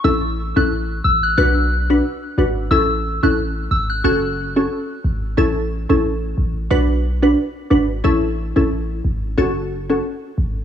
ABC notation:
X:1
M:4/4
L:1/16
Q:"Swing 16ths" 1/4=90
K:A
V:1 name="Synth bell"
e'2 z f' z2 e' f' f'3 z4 z | e'2 z f' z2 e' f' f'3 z4 z | z16 | z16 |]
V:2 name="Synth pluck"
[CEA] z2 [CEA] z4 [DFB]3 [DFB] z2 [DFB] z | [CEA] z2 [CEA] z4 [CFA]3 [CFA] z4 | [CEA] z2 [CEA] z4 [DFB]3 [DFB] z2 [DFB] z | [CEA] z2 [CEA] z4 [CFA]3 [CFA] z4 |]
V:3 name="808-style bass" clef=bass
A,,,3 A,,,3 A,,,2 B,,,4 z2 G,,,2 | A,,,3 A,,,3 G,,,2 F,,,4 z2 G,,,2 | A,,,3 A,,,3 A,,,2 B,,,4 z2 G,,,2 | A,,,3 A,,,3 G,,,2 F,,,4 z2 G,,,2 |]